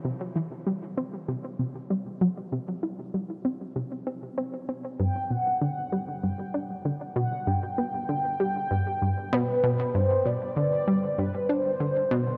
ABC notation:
X:1
M:4/4
L:1/8
Q:1/4=97
K:G
V:1 name="Soft synth lead"
z8 | z8 | g f3 g2 z f | g6 B2 |
c d3 B c3 |]
V:2 name="Synth arpeggio sound" clef=bass
C, E, G, C C, C, G, F, | C, E G, C C, C C C | G,, B,, D, G, G,, D D, B,, | G,, B, D, G, G,, G,, B,, B,, |
G,, B,, D, G, G,, D D, B,, |]